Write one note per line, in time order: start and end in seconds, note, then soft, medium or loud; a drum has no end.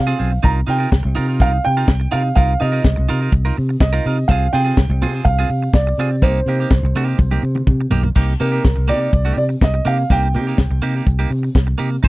0.00 0.13 C3 loud
0.00 0.46 F5 medium
0.07 0.18 C4 medium
0.07 0.18 F4 medium
0.07 0.19 G#4 medium
0.19 0.37 B1 medium
0.19 0.32 C4 medium
0.19 0.31 F4 medium
0.19 0.30 G#4 medium
0.19 open hi-hat medium
0.32 muted clean electric guitar stroke soft
0.43 0.62 C2 loud
0.43 0.59 D#4 medium
0.43 0.60 F4 medium
0.43 0.60 A#4 loud
0.43 0.50 A#5 loud
0.43 kick loud
0.43 closed hi-hat medium
0.67 0.85 C3 medium
0.67 0.79 D#4 medium
0.67 0.78 F4 medium
0.67 0.77 A#4 medium
0.67 1.43 G5 loud
0.67 open hi-hat medium
0.79 0.89 D#4 medium
0.79 0.90 F4 medium
0.79 0.90 A#4 medium
0.91 1.01 C2 medium
0.91 muted clean electric guitar stroke soft
0.91 kick loud
0.91 snare loud
0.91 closed hi-hat medium
1.03 1.13 C2 loud
1.03 muted clean electric guitar stroke soft
1.15 1.42 C3 loud
1.15 1.28 D#4 medium
1.15 1.27 F4 loud
1.15 1.27 A#4 loud
1.15 open hi-hat medium
1.28 1.39 D#4 medium
1.28 1.40 F4 medium
1.28 1.40 A#4 medium
1.40 1.58 C2 loud
1.40 1.57 D#4 medium
1.40 1.53 F4 medium
1.40 1.51 A#4 loud
1.40 1.65 F5 loud
1.40 kick loud
1.40 closed hi-hat medium
1.53 muted clean electric guitar stroke soft
1.64 1.83 C3 medium
1.64 2.14 G5 loud
1.64 muted clean electric guitar stroke medium
1.64 open hi-hat medium
1.77 1.90 D#4 medium
1.77 1.89 F4 medium
1.77 1.89 A#4 medium
1.88 2.06 C2 medium
1.88 kick loud
1.88 snare loud
1.88 closed hi-hat medium
2.00 muted clean electric guitar stroke medium
2.12 2.31 C3 medium
2.12 2.28 D#4 medium
2.12 2.23 F4 loud
2.12 2.22 A#4 loud
2.12 2.34 F5 loud
2.12 open hi-hat medium
2.23 muted clean electric guitar stroke soft
2.36 2.54 C2 loud
2.36 2.52 D#4 medium
2.36 2.53 F4 medium
2.36 2.53 A#4 medium
2.36 2.58 F5 loud
2.36 kick loud
2.36 closed hi-hat medium
2.60 2.79 C3 loud
2.60 2.72 D#4 medium
2.60 2.71 F4 medium
2.60 2.71 A#4 medium
2.60 3.29 D#5 loud
2.60 open hi-hat medium
2.72 2.83 D#4 medium
2.72 2.83 F4 medium
2.72 2.84 A#4 medium
2.84 2.93 C2 loud
2.84 kick loud
2.84 snare loud
2.84 closed hi-hat medium
2.96 3.06 C2 loud
2.96 muted clean electric guitar stroke soft
3.09 3.28 C3 loud
3.09 3.21 D#4 medium
3.09 3.20 F4 loud
3.09 3.19 A#4 loud
3.09 open hi-hat medium
3.21 3.32 D#4 medium
3.21 3.33 F4 medium
3.21 3.33 A#4 medium
3.32 3.50 C2 medium
3.32 muted clean electric guitar stroke soft
3.32 kick loud
3.32 closed hi-hat medium
3.45 3.56 D#4 medium
3.45 3.56 F4 medium
3.45 3.57 A#4 medium
3.56 3.75 C3 loud
3.56 muted clean electric guitar stroke medium
3.56 open hi-hat medium
3.69 muted clean electric guitar stroke medium
3.80 3.98 C2 loud
3.80 4.26 D#5 medium
3.80 muted clean electric guitar stroke soft
3.80 kick loud
3.80 snare loud
3.80 closed hi-hat medium
3.93 4.05 D#4 medium
3.93 4.06 F4 medium
3.93 4.06 A#4 loud
4.05 4.23 C3 loud
4.05 4.19 D#4 medium
4.05 4.18 F4 medium
4.05 4.17 A#4 medium
4.05 open hi-hat medium
4.28 4.47 C2 loud
4.28 4.46 C4 medium
4.28 4.47 F4 medium
4.28 4.47 G#4 medium
4.28 4.53 F5 loud
4.28 kick loud
4.28 closed hi-hat medium
4.53 4.71 C3 loud
4.53 4.65 C4 medium
4.53 4.64 F4 medium
4.53 4.63 G#4 medium
4.53 5.28 G5 loud
4.53 open hi-hat medium
4.65 4.76 C4 medium
4.65 4.77 F4 medium
4.65 4.77 G#4 medium
4.77 4.86 C2 loud
4.77 kick loud
4.77 snare loud
4.77 closed hi-hat medium
4.89 5.03 C2 loud
4.89 muted clean electric guitar stroke soft
5.01 5.20 C3 loud
5.01 5.15 C4 loud
5.01 5.14 F4 loud
5.01 5.13 G#4 loud
5.01 open hi-hat medium
5.14 5.26 C4 soft
5.14 5.26 F4 medium
5.14 5.27 G#4 medium
5.25 5.43 C2 loud
5.25 5.75 F5 loud
5.25 muted clean electric guitar stroke soft
5.25 kick loud
5.25 closed hi-hat medium
5.39 5.49 C4 medium
5.39 5.49 F4 medium
5.39 5.50 G#4 medium
5.49 5.68 C3 medium
5.49 muted clean electric guitar stroke soft
5.49 open hi-hat medium
5.62 muted clean electric guitar stroke medium
5.73 5.92 C2 loud
5.73 6.24 D5 medium
5.73 kick loud
5.73 snare loud
5.73 closed hi-hat medium
5.87 muted clean electric guitar stroke medium
5.97 6.24 C3 medium
5.97 6.15 C4 medium
5.97 6.11 F4 medium
5.97 6.10 G#4 loud
5.97 open hi-hat medium
6.11 muted clean electric guitar stroke soft
6.22 6.40 C2 loud
6.22 6.39 A#3 medium
6.22 6.39 D#4 medium
6.22 6.40 G4 medium
6.22 7.64 C5 medium
6.22 kick loud
6.22 closed hi-hat medium
6.46 6.64 C3 loud
6.46 6.60 A#3 medium
6.46 6.60 D#4 medium
6.46 6.59 G4 medium
6.46 open hi-hat medium
6.60 6.72 A#3 medium
6.60 6.73 D#4 medium
6.60 6.72 G4 medium
6.71 6.80 C2 loud
6.71 muted clean electric guitar stroke soft
6.71 kick loud
6.71 snare loud
6.71 closed hi-hat medium
6.83 6.92 C2 loud
6.83 muted clean electric guitar stroke medium
6.95 7.13 C3 loud
6.95 7.08 A#3 medium
6.95 7.07 D#4 loud
6.95 7.07 G4 loud
6.95 open hi-hat medium
7.08 7.18 A#3 soft
7.08 7.19 D#4 medium
7.08 7.19 G4 medium
7.19 7.37 C2 loud
7.19 muted clean electric guitar stroke soft
7.19 kick loud
7.19 high tom medium
7.31 7.43 A#3 medium
7.31 7.44 D#4 medium
7.31 7.43 G4 medium
7.31 high tom medium
7.43 7.61 C3 loud
7.43 muted clean electric guitar stroke soft
7.55 muted clean electric guitar stroke medium
7.55 mid tom medium
7.67 7.85 C3 medium
7.67 kick loud
7.67 mid tom medium
7.81 muted clean electric guitar stroke medium
7.90 8.09 B1 medium
7.90 8.08 A#3 medium
7.90 8.04 D#4 medium
7.90 8.03 G4 loud
7.90 floor tom loud
8.03 muted clean electric guitar stroke medium
8.03 floor tom medium
8.15 8.34 C2 loud
8.15 8.32 A#3 medium
8.15 8.33 D#4 medium
8.15 8.33 G4 medium
8.15 kick loud
8.15 crash medium
8.40 8.58 C3 loud
8.40 8.52 A#3 medium
8.40 8.51 D#4 medium
8.40 8.51 G4 medium
8.40 8.90 A#4 medium
8.40 open hi-hat medium
8.52 8.63 A#3 medium
8.52 8.64 D#4 medium
8.52 8.65 G4 medium
8.64 8.74 C2 loud
8.64 kick loud
8.64 snare loud
8.64 closed hi-hat medium
8.76 8.91 C2 loud
8.76 muted clean electric guitar stroke soft
8.88 9.07 C3 medium
8.88 9.00 A#3 medium
8.88 8.99 D#4 loud
8.88 8.99 G4 loud
8.88 9.34 D5 loud
8.88 open hi-hat medium
9.00 9.11 A#3 soft
9.00 9.12 D#4 soft
9.00 9.12 G4 medium
9.12 9.31 C2 loud
9.12 muted clean electric guitar stroke soft
9.12 kick loud
9.12 closed hi-hat medium
9.25 9.36 A#3 medium
9.25 9.37 D#4 medium
9.25 9.37 G4 medium
9.37 9.55 C3 medium
9.37 9.43 D5 medium
9.37 muted clean electric guitar stroke medium
9.37 open hi-hat medium
9.49 muted clean electric guitar stroke soft
9.61 9.79 C2 medium
9.61 9.88 D#5 medium
9.61 kick loud
9.61 snare loud
9.61 closed hi-hat medium
9.74 muted clean electric guitar stroke soft
9.85 10.03 C3 loud
9.85 10.02 A#3 medium
9.85 9.98 D#4 medium
9.85 9.98 G4 medium
9.85 10.12 F5 medium
9.85 open hi-hat medium
9.99 muted clean electric guitar stroke medium
10.10 10.36 C2 medium
10.10 10.27 A#3 medium
10.10 10.27 D#4 medium
10.10 10.28 G4 loud
10.10 11.04 G5 loud
10.10 kick loud
10.10 closed hi-hat medium
10.34 10.52 C3 medium
10.34 10.47 A#3 medium
10.34 10.47 D#4 medium
10.34 10.46 G4 medium
10.34 open hi-hat medium
10.47 10.58 A#3 medium
10.47 10.58 D#4 medium
10.47 10.59 G4 medium
10.58 10.67 C2 medium
10.58 muted clean electric guitar stroke soft
10.58 kick loud
10.58 snare loud
10.58 closed hi-hat medium
10.70 10.79 C2 loud
10.70 muted clean electric guitar stroke soft
10.82 11.00 C3 medium
10.82 10.96 A#3 medium
10.82 10.95 D#4 loud
10.82 10.94 G4 loud
10.82 open hi-hat medium
10.96 11.05 A#3 medium
10.96 11.06 D#4 medium
10.96 11.07 G4 medium
11.07 11.25 C2 loud
11.07 muted clean electric guitar stroke soft
11.07 kick loud
11.07 closed hi-hat medium
11.19 11.30 A#3 medium
11.19 11.31 D#4 medium
11.19 11.31 G4 medium
11.30 11.48 C3 medium
11.30 open hi-hat medium
11.43 muted clean electric guitar stroke medium
11.55 11.73 C2 medium
11.55 kick loud
11.55 snare loud
11.55 closed hi-hat medium
11.67 muted clean electric guitar stroke soft
11.78 11.97 C3 medium
11.78 11.95 A#3 medium
11.78 11.90 D#4 medium
11.78 11.89 G4 medium
11.78 open hi-hat medium
11.91 muted clean electric guitar stroke soft
12.03 12.08 F1 loud
12.03 12.08 D#4 medium
12.03 12.08 G#4 medium
12.03 12.08 C5 loud
12.03 kick loud
12.03 closed hi-hat medium